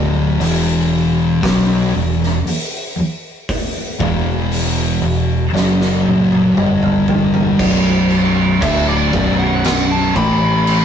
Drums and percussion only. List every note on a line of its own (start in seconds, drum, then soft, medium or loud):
0.41 open hi-hat medium
1.43 kick loud
1.43 snare loud
1.43 open hi-hat medium
2.23 snare soft
2.47 open hi-hat medium
3.49 kick loud
3.49 open hi-hat medium
4.00 kick loud
4.52 open hi-hat medium
5.56 snare medium
5.81 snare medium
6.06 high tom medium
6.32 high tom medium
6.57 mid tom medium
6.83 mid tom medium
7.08 floor tom loud
7.34 floor tom medium
7.59 kick loud
7.59 crash loud
7.59 crash medium
8.10 crash medium
8.62 kick loud
8.62 crash loud
9.13 kick loud
9.13 crash medium
9.64 snare loud
9.64 crash loud
10.16 kick loud
10.16 crash medium
10.67 crash medium